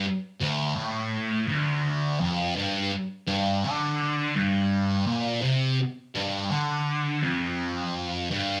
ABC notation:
X:1
M:4/4
L:1/8
Q:1/4=84
K:G
V:1 name="Distorted electric guitar" clef=bass
z D,, A,,2 D,,2 =F,, G,, | z G,, D,2 G,,2 _B,, C, | z G,, D,2 =F,,3 G,, |]